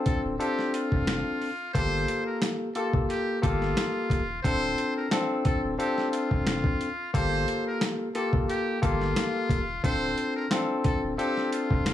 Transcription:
0.00 0.35 C4 loud
0.00 0.35 D4 medium
0.00 0.35 F4 medium
0.00 0.35 A4 loud
0.06 0.23 A4 medium
0.06 kick loud
0.06 closed hi-hat medium
0.25 0.38 D1 medium
0.39 1.49 C4 medium
0.39 1.49 D4 medium
0.39 1.49 F4 medium
0.39 0.70 G4 medium
0.39 1.49 A4 loud
0.39 closed hi-hat medium
0.59 snare soft
0.74 1.71 F4 medium
0.74 closed hi-hat medium
0.92 1.23 F1 medium
0.92 kick medium
1.07 snare loud
1.07 snare medium
1.07 closed hi-hat medium
1.42 open hi-hat soft
1.73 2.05 G1 loud
1.73 2.68 A#3 loud
1.73 2.68 F4 medium
1.73 2.68 G4 medium
1.73 2.68 A4 loud
1.73 2.23 C5 loud
1.73 kick loud
1.73 closed hi-hat medium
2.08 closed hi-hat medium
2.27 2.40 A#4 medium
2.42 snare loud
2.42 snare medium
2.42 closed hi-hat medium
2.75 3.38 A#3 medium
2.75 3.38 F4 medium
2.75 3.38 G4 medium
2.75 2.92 A4 medium
2.75 3.38 A4 loud
2.75 closed hi-hat medium
2.93 3.08 F1 medium
2.93 kick loud
3.10 3.40 G4 medium
3.10 closed hi-hat medium
3.42 3.74 G1 medium
3.42 4.21 A#3 medium
3.42 4.21 F4 medium
3.42 4.40 F4 medium
3.42 4.21 G4 medium
3.42 4.21 A4 loud
3.42 kick medium
3.42 closed hi-hat medium
3.62 snare soft
3.77 snare loud
3.77 snare medium
3.77 closed hi-hat medium
4.10 4.41 D#1 medium
4.10 kick medium
4.10 closed hi-hat medium
4.43 4.75 D1 loud
4.43 5.07 C4 medium
4.43 5.07 D4 medium
4.43 5.07 F4 medium
4.43 5.07 A4 loud
4.43 4.93 C5 loud
4.43 kick loud
4.43 closed hi-hat medium
4.78 closed hi-hat medium
4.97 5.10 A#4 medium
5.11 5.74 C4 loud
5.11 5.74 D4 medium
5.11 5.74 F4 medium
5.11 5.74 A4 loud
5.11 snare loud
5.11 snare medium
5.11 closed hi-hat medium
5.45 5.62 A4 medium
5.45 kick loud
5.45 closed hi-hat medium
5.64 5.78 D1 medium
5.79 6.88 C4 medium
5.79 6.88 D4 medium
5.79 6.88 F4 medium
5.79 6.10 G4 medium
5.79 6.88 A4 loud
5.79 closed hi-hat medium
5.98 snare soft
6.12 7.09 F4 medium
6.12 closed hi-hat medium
6.31 6.62 F1 medium
6.31 kick medium
6.47 snare loud
6.47 snare medium
6.47 closed hi-hat medium
6.64 kick medium
6.81 closed hi-hat medium
7.14 7.45 G1 loud
7.14 8.08 A#3 loud
7.14 8.08 F4 medium
7.14 8.08 G4 medium
7.14 8.08 A4 loud
7.14 7.63 C5 loud
7.14 kick loud
7.14 closed hi-hat medium
7.48 closed hi-hat medium
7.67 7.80 A#4 medium
7.81 snare loud
7.81 snare medium
7.81 closed hi-hat medium
8.15 8.78 A#3 medium
8.15 8.78 F4 medium
8.15 8.78 G4 medium
8.15 8.32 A4 medium
8.15 8.78 A4 loud
8.15 closed hi-hat medium
8.33 8.47 F1 medium
8.33 kick loud
8.49 8.79 G4 medium
8.49 closed hi-hat medium
8.82 9.13 G1 medium
8.82 9.60 A#3 medium
8.82 9.61 F4 medium
8.82 9.80 F4 medium
8.82 9.61 G4 medium
8.82 9.61 A4 loud
8.82 kick loud
8.82 closed hi-hat medium
9.01 snare soft
9.16 snare loud
9.16 snare medium
9.16 closed hi-hat medium
9.49 9.80 D#1 medium
9.49 kick medium
9.49 closed hi-hat medium
9.83 10.14 D1 loud
9.83 10.46 C4 medium
9.83 10.46 D4 medium
9.83 10.46 F4 medium
9.83 10.46 A4 loud
9.83 10.33 C5 loud
9.83 kick loud
9.83 closed hi-hat medium
10.18 closed hi-hat medium
10.36 10.50 A#4 medium
10.50 11.13 C4 loud
10.50 11.13 D4 medium
10.50 11.13 F4 medium
10.50 11.13 A4 loud
10.50 snare loud
10.50 snare medium
10.50 closed hi-hat medium
10.84 11.01 A4 medium
10.84 kick loud
10.84 closed hi-hat medium
11.03 11.17 D1 medium
11.18 11.94 C4 medium
11.18 11.94 D4 medium
11.18 11.94 F4 medium
11.18 11.49 G4 medium
11.18 11.94 A4 loud
11.18 closed hi-hat medium
11.37 snare soft
11.52 11.94 F4 medium
11.52 closed hi-hat medium
11.71 11.94 F1 medium
11.71 kick medium
11.86 snare loud
11.86 snare medium
11.86 closed hi-hat medium

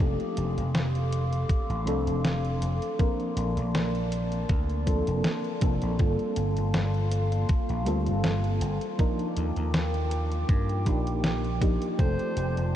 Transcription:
0.00 0.15 F1 medium
0.00 1.82 F3 medium
0.00 1.83 A3 medium
0.00 1.83 C4 medium
0.00 1.83 D4 medium
0.00 2.97 A4 medium
0.00 1.84 A4 medium
0.00 2.97 F5 medium
0.00 5.96 C6 medium
0.00 2.97 D6 medium
0.00 kick loud
0.00 closed hi-hat medium
0.20 closed hi-hat soft
0.37 0.53 F1 medium
0.37 closed hi-hat medium
0.57 1.44 F1 medium
0.57 closed hi-hat medium
0.75 snare loud
0.75 closed hi-hat soft
0.95 closed hi-hat soft
1.12 closed hi-hat medium
1.33 closed hi-hat soft
1.49 kick loud
1.49 closed hi-hat medium
1.69 1.87 A1 medium
1.69 closed hi-hat soft
1.85 2.08 C2 medium
1.85 2.94 F3 medium
1.85 2.95 A3 medium
1.85 2.95 C4 medium
1.85 2.96 D4 medium
1.85 2.96 A4 loud
1.85 closed hi-hat medium
2.07 2.56 F1 medium
2.07 closed hi-hat medium
2.25 snare loud
2.25 closed hi-hat soft
2.45 closed hi-hat soft
2.62 2.78 F1 medium
2.62 closed hi-hat medium
2.82 closed hi-hat soft
2.98 3.22 F3 medium
2.98 3.22 A#3 medium
2.98 8.96 A#3 medium
2.98 3.22 C4 medium
2.98 3.22 D4 medium
2.98 3.22 A#4 loud
2.98 5.97 D5 medium
2.98 8.96 A5 medium
2.98 kick loud
2.98 closed hi-hat medium
3.20 closed hi-hat soft
3.36 3.53 A#1 medium
3.36 closed hi-hat medium
3.57 4.43 A#1 medium
3.57 closed hi-hat medium
3.75 snare loud
3.75 closed hi-hat soft
3.95 closed hi-hat soft
4.12 closed hi-hat medium
4.32 closed hi-hat soft
4.49 5.00 D2 medium
4.49 kick loud
4.49 closed hi-hat soft
4.69 closed hi-hat soft
4.86 5.57 F3 medium
4.86 5.58 A#3 medium
4.86 5.58 C4 medium
4.86 5.58 D4 medium
4.86 5.58 A4 loud
4.86 kick medium
4.86 closed hi-hat medium
5.07 5.21 F1 medium
5.07 closed hi-hat medium
5.24 snare loud
5.24 closed hi-hat medium
5.44 closed hi-hat soft
5.60 5.78 F1 medium
5.60 5.95 F3 medium
5.60 5.95 A#3 medium
5.60 5.95 C4 medium
5.60 5.95 D4 medium
5.60 5.95 A4 loud
5.60 kick loud
5.60 closed hi-hat medium
5.82 5.96 A#1 loud
5.82 closed hi-hat soft
5.97 6.15 G1 medium
5.97 7.82 G3 medium
5.97 7.82 A#3 medium
5.97 7.83 C4 medium
5.97 7.83 F4 medium
5.97 7.83 A4 medium
5.97 8.97 F5 medium
5.97 8.97 C6 medium
5.97 kick loud
5.97 closed hi-hat medium
6.19 closed hi-hat soft
6.36 6.53 G1 medium
6.36 closed hi-hat loud
6.57 7.44 G1 medium
6.57 closed hi-hat medium
6.74 snare loud
6.74 closed hi-hat soft
6.94 closed hi-hat soft
7.12 closed hi-hat medium
7.32 closed hi-hat soft
7.49 kick loud
7.49 closed hi-hat medium
7.69 7.87 A#1 medium
7.69 closed hi-hat soft
7.85 8.08 D2 medium
7.85 8.95 G3 loud
7.85 8.95 A#3 medium
7.85 8.95 C4 medium
7.85 8.96 F4 medium
7.85 8.96 A4 loud
7.85 closed hi-hat medium
8.07 8.56 G1 medium
8.07 closed hi-hat soft
8.24 snare loud
8.24 closed hi-hat medium
8.44 closed hi-hat soft
8.61 8.78 G1 medium
8.61 closed hi-hat medium
8.81 closed hi-hat soft
8.98 9.21 F3 medium
8.98 9.22 A#3 medium
8.98 9.22 D4 medium
8.98 9.22 D#4 medium
8.98 12.76 F4 medium
8.98 9.22 A#4 loud
8.98 11.97 G5 medium
8.98 11.97 D6 medium
8.98 kick loud
8.98 closed hi-hat soft
9.19 closed hi-hat soft
9.37 9.53 D#2 medium
9.37 closed hi-hat medium
9.56 10.43 D#2 medium
9.56 closed hi-hat soft
9.74 snare loud
9.74 closed hi-hat soft
9.94 closed hi-hat soft
10.11 closed hi-hat medium
10.32 closed hi-hat soft
10.49 10.88 G2 medium
10.49 kick loud
10.49 closed hi-hat soft
10.69 closed hi-hat soft
10.85 11.75 A#1 medium
10.85 11.57 F3 medium
10.85 11.57 A#3 medium
10.85 11.57 D4 medium
10.85 11.58 D#4 medium
10.85 11.58 G4 loud
10.85 kick medium
10.85 closed hi-hat medium
11.07 closed hi-hat soft
11.24 snare loud
11.24 closed hi-hat soft
11.44 closed hi-hat soft
11.61 11.95 F3 medium
11.61 11.95 A#3 medium
11.61 11.95 D4 medium
11.61 11.95 D#4 medium
11.61 11.96 G4 loud
11.61 kick loud
11.61 closed hi-hat medium
11.82 closed hi-hat soft
11.98 12.15 F1 medium
11.98 12.76 F3 medium
11.98 12.76 A3 medium
11.98 12.76 C4 medium
11.98 12.76 D4 medium
11.98 12.76 A4 medium
11.98 12.70 C5 loud
11.98 12.76 D5 medium
11.98 12.76 A5 medium
11.98 12.76 C6 medium
11.98 kick loud
11.98 closed hi-hat soft
12.19 closed hi-hat soft
12.37 12.53 F1 medium
12.37 closed hi-hat medium
12.57 12.76 F1 medium
12.57 closed hi-hat soft

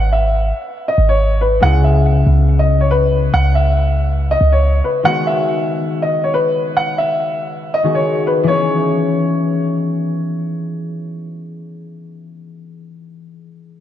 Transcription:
0.00 0.53 G#1 loud
0.00 0.10 F#5 medium
0.13 0.84 E5 medium
0.88 1.07 D#5 medium
0.98 1.60 G#1 loud
1.09 1.39 C#5 medium
1.41 1.60 B4 medium
1.60 2.24 C#2 loud
1.60 5.10 C#3 medium
1.60 5.03 G#3 medium
1.60 5.01 B3 medium
1.60 5.02 E4 medium
1.60 1.82 F#5 loud
1.65 5.02 G#4 medium
1.84 2.56 E5 medium
2.27 3.30 C#2 loud
2.59 2.78 D#5 medium
2.81 2.90 C#5 medium
2.91 3.31 B4 loud
3.34 4.37 C#2 loud
3.34 3.53 F#5 loud
3.55 4.27 E5 medium
4.31 4.50 D#5 medium
4.41 4.82 C#2 loud
4.52 4.82 C#5 medium
4.84 5.03 B4 medium
5.03 7.82 D#3 medium
5.03 7.83 G#3 medium
5.03 7.84 B3 medium
5.03 7.80 F#4 medium
5.03 5.24 F#5 loud
5.08 7.81 G#4 medium
5.27 5.98 E5 medium
6.02 6.21 D#5 medium
6.24 6.33 C#5 medium
6.34 6.74 B4 medium
6.77 6.96 F#5 medium
6.98 7.70 E5 medium
7.74 7.93 D#5 medium
7.83 8.53 D#3 medium
7.83 8.53 G#3 soft
7.83 8.46 B3 medium
7.83 10.29 F#4 soft
7.83 8.52 G#4 medium
7.95 8.25 C#5 medium
8.27 8.46 B4 medium
8.43 13.09 E3 medium
8.43 13.12 B3 medium
8.48 13.15 C#4 medium
8.48 9.73 C#5 medium
8.53 13.19 G#4 medium

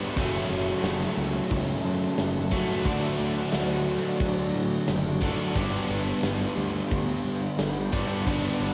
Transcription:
0.00 0.15 G2 medium
0.00 0.16 D3 medium
0.00 0.15 G3 medium
0.00 0.16 G3 medium
0.00 0.15 B3 medium
0.00 0.16 B3 medium
0.00 0.14 D4 loud
0.00 0.15 D4 medium
0.00 0.13 G4 medium
0.00 0.15 G4 medium
0.00 2.82 E5 medium
0.00 0.13 B5 medium
0.00 tambourine soft
0.15 0.38 F#1 loud
0.15 1.15 F#2 loud
0.15 2.50 F#2 loud
0.15 1.16 C#3 loud
0.15 2.50 C#3 loud
0.15 1.18 F#3 loud
0.15 2.53 F#3 loud
0.15 2.51 A3 loud
0.15 1.18 A3 loud
0.15 2.51 C#4 loud
0.15 5.52 F#4 medium
0.15 2.51 F#4 loud
0.15 2.84 A5 medium
0.15 kick loud
0.15 crash medium
0.20 1.16 C#4 loud
0.34 snare soft
0.34 tambourine medium
0.50 0.72 F#1 medium
0.68 tambourine soft
0.83 1.05 F#1 loud
0.83 snare loud
0.83 tambourine loud
0.83 crash medium
1.02 tambourine soft
1.17 1.39 C#2 medium
1.17 2.86 F#2 medium
1.17 2.84 C#3 medium
1.17 2.86 F#3 medium
1.17 2.84 A3 medium
1.17 2.84 C#4 medium
1.51 1.73 C#2 loud
1.51 kick loud
1.51 crash medium
1.85 2.07 F#2 medium
1.85 tambourine medium
2.18 2.62 F#1 medium
2.18 snare loud
2.18 tambourine loud
2.18 crash medium
2.51 2.85 F#2 medium
2.51 2.85 C#3 medium
2.51 2.84 F#3 medium
2.51 2.84 A3 medium
2.51 2.84 C#4 loud
2.51 2.87 F#4 medium
2.51 kick medium
2.51 tambourine medium
2.85 3.07 D2 medium
2.85 3.85 D3 loud
2.85 5.20 D3 medium
2.85 3.88 F#3 loud
2.85 5.23 F#3 loud
2.85 5.20 A3 medium
2.85 3.85 A3 loud
2.85 5.22 D4 loud
2.85 5.21 F#4 loud
2.85 5.54 D5 medium
2.85 5.54 C#6 medium
2.85 kick loud
2.85 tambourine soft
2.85 crash medium
2.89 3.85 D4 loud
3.02 snare soft
3.02 tambourine medium
3.19 3.41 D2 loud
3.19 tambourine medium
3.38 tambourine soft
3.52 3.97 D2 medium
3.52 snare loud
3.52 tambourine loud
3.52 crash medium
3.86 5.54 D3 medium
3.86 5.57 F#3 medium
3.86 5.54 A3 medium
3.86 5.58 D4 medium
4.05 tambourine soft
4.20 4.42 D2 loud
4.20 kick loud
4.20 tambourine soft
4.20 crash medium
4.53 4.76 A2 medium
4.53 tambourine medium
4.73 tambourine soft
4.88 5.32 F#1 medium
4.88 snare loud
4.88 tambourine loud
4.88 crash medium
5.07 tambourine soft
5.21 5.54 D3 medium
5.21 5.56 F#3 medium
5.21 5.54 A3 medium
5.21 5.56 D4 medium
5.21 5.57 F#4 loud
5.21 kick loud
5.21 tambourine medium
5.54 5.77 G1 loud
5.54 7.90 G2 medium
5.54 6.60 G2 medium
5.54 7.90 D3 loud
5.54 6.55 D3 loud
5.54 7.90 G3 loud
5.54 6.58 G3 loud
5.54 7.90 B3 medium
5.54 7.91 D4 loud
5.54 8.74 G4 medium
5.54 7.90 G4 loud
5.54 8.74 F#5 medium
5.54 8.74 B5 medium
5.54 kick loud
5.54 crash medium
5.58 6.57 B3 loud
5.58 6.56 D4 loud
5.73 snare soft
5.73 tambourine medium
5.89 6.11 G1 loud
5.89 tambourine medium
6.23 6.45 G1 medium
6.23 snare loud
6.23 tambourine loud
6.23 crash medium
6.41 tambourine soft
6.56 6.79 D2 medium
6.56 8.24 G2 medium
6.56 8.25 D3 medium
6.56 8.25 G3 medium
6.56 8.24 B3 loud
6.56 8.24 D4 loud
6.91 7.13 D2 loud
6.91 kick loud
6.91 crash medium
7.24 7.47 G2 medium
7.24 tambourine medium
7.43 tambourine soft
7.58 8.02 G1 medium
7.58 snare loud
7.58 tambourine loud
7.58 crash medium
7.91 8.24 G2 medium
7.91 8.25 D3 medium
7.91 8.25 G3 medium
7.91 8.25 B3 medium
7.91 8.24 D4 medium
7.91 8.24 G4 medium
7.91 kick loud
7.91 tambourine medium
8.10 tambourine soft
8.25 8.48 G1 loud
8.25 8.74 G2 loud
8.25 8.74 G2 medium
8.25 8.74 D3 loud
8.25 8.74 G3 loud
8.25 8.74 B3 loud
8.25 8.74 D4 loud
8.25 8.74 G4 loud
8.25 kick loud
8.25 crash medium
8.29 8.74 D4 loud
8.44 snare soft
8.44 tambourine medium
8.60 8.74 G1 loud
8.60 tambourine medium

